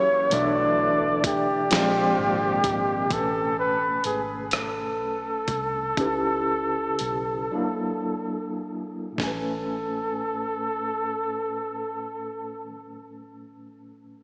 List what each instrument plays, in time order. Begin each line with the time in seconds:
Already playing: tonewheel organ E3 F#3 A#3 G4, tine electric piano F#3 C#4 G4 A#4 E5, flugelhorn C#5
0.30 fingered electric bass B1, horn section A2 D3 F#3 D4, tine electric piano B2 E3 D4 A4 D5, tonewheel organ D3 A3 D4, flugelhorn D5, closed hi-hat
0.34 tine electric piano E5
1.24 flugelhorn G4, kick, closed hi-hat
1.70 fingered electric bass A#1, tine electric piano A#2 F3 G#3 C4 D5, tonewheel organ C3 G#3 A#3, horn section D3 F3 C4 F4, snare, closed hi-hat
2.19 fingered electric bass G#1
2.64 fingered electric bass G#1, kick, closed hi-hat
3.07 fingered electric bass A1, tine electric piano B2 A3, kick, closed hi-hat
3.11 tine electric piano C#4 B4 G#5, flugelhorn A4
3.59 flugelhorn B4
4.04 fingered electric bass G#1, flugelhorn G#4, closed hi-hat
4.51 flugelhorn A4, cross-stick, closed hi-hat
5.01 fingered electric bass B1
5.48 fingered electric bass C2, kick, closed hi-hat
5.97 fingered electric bass C#2, tine electric piano C#3 C#4 D#4 G4 B4, kick, closed hi-hat
6.05 tine electric piano E4
6.99 fingered electric bass B1, closed hi-hat
7.51 tine electric piano F#3 A#3 D4 E4 A4
9.12 tine electric piano A2 A3
9.18 fingered electric bass A1, tine electric piano C#4, flugelhorn A4, kick, snare
9.23 tine electric piano B4 G#5